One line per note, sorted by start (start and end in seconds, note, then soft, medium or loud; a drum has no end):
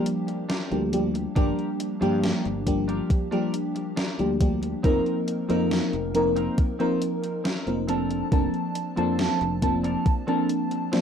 0.00 0.44 F3 loud
0.00 0.44 G3 medium
0.00 0.44 A#3 medium
0.00 0.45 D4 medium
0.00 0.45 G4 loud
0.06 closed hi-hat medium
0.27 muted clean electric guitar stroke soft
0.27 closed hi-hat medium
0.49 0.82 D4 medium
0.49 0.82 F4 medium
0.49 0.82 G4 medium
0.49 0.83 A#4 medium
0.49 snare loud
0.49 closed hi-hat medium
0.71 1.25 D2 medium
0.71 0.89 F3 medium
0.71 0.90 G3 medium
0.71 0.90 A#3 medium
0.71 0.90 D4 medium
0.71 0.90 G4 medium
0.71 closed hi-hat soft
0.92 1.31 F3 medium
0.92 1.31 G3 medium
0.92 1.31 A#3 medium
0.92 1.31 D4 medium
0.92 1.32 G4 medium
0.92 closed hi-hat loud
1.14 muted clean electric guitar stroke soft
1.14 closed hi-hat medium
1.35 1.51 G1 loud
1.35 1.96 F3 medium
1.35 1.96 G3 medium
1.35 1.97 A#3 medium
1.35 1.69 D4 loud
1.35 1.97 D4 medium
1.35 1.69 F4 loud
1.35 1.69 G4 loud
1.35 1.97 G4 loud
1.35 1.69 A#4 loud
1.35 kick loud
1.35 closed hi-hat medium
1.59 closed hi-hat soft
1.80 closed hi-hat loud
2.01 2.31 G2 medium
2.01 2.61 F3 loud
2.01 2.61 G3 medium
2.01 2.62 A#3 medium
2.01 2.45 D4 medium
2.01 2.62 D4 medium
2.01 2.45 F4 medium
2.01 2.45 G4 medium
2.01 2.62 G4 loud
2.01 2.46 A#4 loud
2.01 closed hi-hat medium
2.24 snare loud
2.24 closed hi-hat medium
2.45 2.99 G1 medium
2.45 closed hi-hat soft
2.66 3.27 F3 medium
2.66 3.27 G3 medium
2.66 3.27 A#3 medium
2.66 3.27 D4 medium
2.66 3.27 G4 loud
2.66 kick medium
2.66 closed hi-hat medium
2.88 3.10 D4 medium
2.88 3.10 F4 medium
2.88 3.10 G4 medium
2.88 3.11 A#4 medium
2.88 closed hi-hat medium
3.10 kick loud
3.10 closed hi-hat medium
3.31 3.92 F3 loud
3.31 3.92 G3 medium
3.31 3.92 A#3 medium
3.31 3.53 D4 loud
3.31 3.92 D4 medium
3.31 3.54 F4 loud
3.31 3.54 G4 loud
3.31 3.92 G4 loud
3.31 3.54 A#4 loud
3.31 closed hi-hat soft
3.54 closed hi-hat medium
3.75 muted clean electric guitar stroke soft
3.75 closed hi-hat medium
3.96 4.30 D4 medium
3.96 4.30 F4 medium
3.96 4.30 G4 medium
3.96 4.30 A#4 loud
3.96 snare loud
3.96 closed hi-hat medium
4.19 4.73 D2 medium
4.19 4.37 F3 medium
4.19 4.37 G3 medium
4.19 4.38 A#3 medium
4.19 4.38 D4 medium
4.19 4.38 G4 medium
4.19 closed hi-hat soft
4.40 4.79 F3 medium
4.40 4.79 G3 medium
4.40 4.79 A#3 medium
4.40 4.79 D4 medium
4.40 4.80 G4 medium
4.40 kick loud
4.40 closed hi-hat loud
4.62 muted clean electric guitar stroke soft
4.62 closed hi-hat medium
4.83 4.99 F1 loud
4.83 5.44 F3 medium
4.83 5.44 A#3 medium
4.83 5.16 C4 loud
4.83 5.44 C4 medium
4.83 5.17 D#4 loud
4.83 5.45 D#4 medium
4.83 5.17 F4 loud
4.83 5.17 A#4 loud
4.83 5.45 A#4 loud
4.83 kick loud
4.83 closed hi-hat medium
5.06 closed hi-hat soft
5.28 closed hi-hat loud
5.49 5.79 F2 medium
5.49 6.09 F3 loud
5.49 6.09 A#3 medium
5.49 5.93 C4 medium
5.49 6.09 C4 medium
5.49 5.93 D#4 medium
5.49 6.10 D#4 medium
5.49 5.93 F4 medium
5.49 6.10 A#4 loud
5.49 5.93 A#4 loud
5.49 closed hi-hat medium
5.71 snare loud
5.71 closed hi-hat medium
5.93 6.47 F1 medium
5.93 closed hi-hat soft
6.14 6.74 F3 medium
6.14 6.75 A#3 medium
6.14 6.75 C4 medium
6.14 6.75 D#4 medium
6.14 6.75 A#4 loud
6.14 closed hi-hat medium
6.36 6.58 C4 medium
6.36 6.58 D#4 medium
6.36 6.58 F4 medium
6.36 6.59 A#4 medium
6.36 closed hi-hat medium
6.58 kick loud
6.58 closed hi-hat medium
6.79 7.40 F3 loud
6.79 7.40 A#3 medium
6.79 7.01 C4 loud
6.79 7.40 C4 medium
6.79 7.01 D#4 loud
6.79 7.40 D#4 medium
6.79 7.02 F4 loud
6.79 7.40 A#4 loud
6.79 7.02 C5 loud
6.79 closed hi-hat soft
7.02 closed hi-hat loud
7.23 muted clean electric guitar stroke soft
7.23 closed hi-hat medium
7.44 7.77 C4 medium
7.44 7.78 D#4 medium
7.44 7.78 F4 medium
7.44 7.78 A#4 loud
7.44 snare loud
7.44 closed hi-hat medium
7.66 8.21 F1 medium
7.66 7.85 F3 medium
7.66 7.85 A#3 medium
7.66 7.85 C4 medium
7.66 7.86 D#4 medium
7.66 7.86 A#4 medium
7.66 closed hi-hat soft
7.87 8.27 F3 medium
7.87 8.27 A#3 medium
7.87 8.75 C4 loud
7.87 8.27 C4 medium
7.87 8.75 D4 medium
7.87 8.27 D4 medium
7.87 8.76 A4 medium
7.87 8.76 A#4 loud
7.87 8.27 A5 medium
7.87 closed hi-hat loud
8.11 closed hi-hat medium
8.31 8.47 F1 loud
8.31 8.92 F3 medium
8.31 8.92 A#3 medium
8.31 8.92 C4 medium
8.31 8.92 D4 medium
8.31 8.93 A5 loud
8.31 kick loud
8.31 closed hi-hat soft
8.54 closed hi-hat soft
8.75 closed hi-hat medium
8.96 9.27 F2 medium
8.96 9.57 F3 loud
8.96 9.57 A#3 medium
8.96 9.40 C4 medium
8.96 9.57 C4 loud
8.96 9.41 D4 medium
8.96 9.58 D4 medium
8.96 9.41 A4 medium
8.96 9.41 C5 loud
8.96 9.58 A5 loud
8.96 closed hi-hat soft
9.19 snare loud
9.19 closed hi-hat medium
9.41 9.95 F1 medium
9.41 closed hi-hat soft
9.62 10.22 F3 loud
9.62 10.22 A#3 medium
9.62 10.23 C4 medium
9.62 10.23 D4 medium
9.62 10.23 A5 loud
9.62 kick medium
9.62 closed hi-hat medium
9.83 10.05 C4 medium
9.83 10.06 D4 medium
9.83 10.06 A4 medium
9.83 10.06 A#4 medium
9.83 closed hi-hat medium
10.06 kick loud
10.06 closed hi-hat medium
10.27 10.87 F3 loud
10.27 10.88 A#3 medium
10.27 10.49 C4 loud
10.27 10.88 C4 medium
10.27 10.49 D4 loud
10.27 10.88 D4 medium
10.27 10.50 A4 loud
10.27 10.50 A#4 loud
10.27 10.88 A5 loud
10.27 closed hi-hat soft
10.49 closed hi-hat medium
10.70 muted clean electric guitar stroke soft
10.70 closed hi-hat medium
10.92 11.01 F3 loud
10.92 11.01 A#3 medium
10.92 11.01 C4 medium
10.92 11.01 D4 medium
10.92 11.01 A4 medium
10.92 11.01 C5 loud
10.92 snare loud
10.92 closed hi-hat medium